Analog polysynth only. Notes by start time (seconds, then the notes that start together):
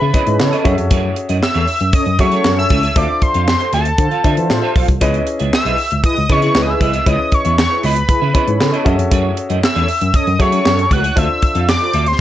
0.27 E4 G#4 B4
0.40 C#4 A4 C#5
1.55 C#4 A4 C#5
1.93 C#4 A4 C#5
2.32 C#4 A4 C#5
2.45 C#4 A4 C#5
3.60 F4 A4 C5
3.99 F4 A4 C5
4.38 F4 A4 C5
4.50 F4 A4 C5
5.65 E4 G#4 B4
6.04 E4 G#4 B4
6.42 E4 G#4 B4
6.55 E4 G#4 B4
7.71 E4 G#4 B4
8.09 E4 G#4 B4
8.47 E4 G#4 B4
8.60 C#4 A4 C#5
9.76 C#4 A4 C#5
10.15 C#4 A4 C#5
10.53 C#4 A4 C#5
10.66 C#4 A4 C#5
11.81 F4 A4 C5